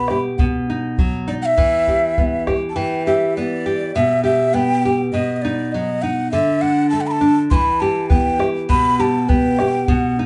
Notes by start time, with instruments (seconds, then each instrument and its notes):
Already playing: nylon-string guitar B2, quena B5
0.08 nylon-string guitar G4, bombo rim
0.38 nylon-string guitar B2, quena F#5, bombo low
0.70 nylon-string guitar D#4
0.98 nylon-string guitar F#3, bombo low
1.28 nylon-string guitar D#4, quena D5
1.42 quena E5 F#5
1.57 nylon-string guitar E3, bombo low
1.87 nylon-string guitar G4, bombo low
2.18 nylon-string guitar B3, bombo low
2.47 nylon-string guitar G4, bombo rim, bombo low
2.69 quena A5
2.76 nylon-string guitar E3, quena G5
3.06 nylon-string guitar G4, quena E5
3.36 nylon-string guitar B3, quena D5
3.66 nylon-string guitar G4
3.95 nylon-string guitar B2, quena E5
4.24 nylon-string guitar G4, quena E5
4.54 nylon-string guitar B3, quena G5
4.85 nylon-string guitar G4
5.13 nylon-string guitar B2, quena D#5
5.36 quena D#5
5.42 nylon-string guitar D#4, quena D5
5.72 nylon-string guitar F#3, quena D#5
6.02 nylon-string guitar D#4, quena F#5
6.31 nylon-string guitar D3, quena E5
6.61 nylon-string guitar D4, quena F#5
6.90 nylon-string guitar A3, quena A5
7.01 quena F#5
7.07 quena B5
7.11 quena A5
7.21 nylon-string guitar D4
7.50 nylon-string guitar E3, quena B5 C6, bombo low
7.80 nylon-string guitar G4, quena A5
8.10 nylon-string guitar B3, quena G5, bombo low
8.39 nylon-string guitar G4, bombo rim
8.69 nylon-string guitar B2, quena B5, bombo low
8.99 nylon-string guitar G4, quena A5
9.29 nylon-string guitar B3, quena G5, bombo low
9.59 nylon-string guitar G4, bombo rim
9.88 nylon-string guitar B2, quena F#5, bombo low
10.19 nylon-string guitar D#4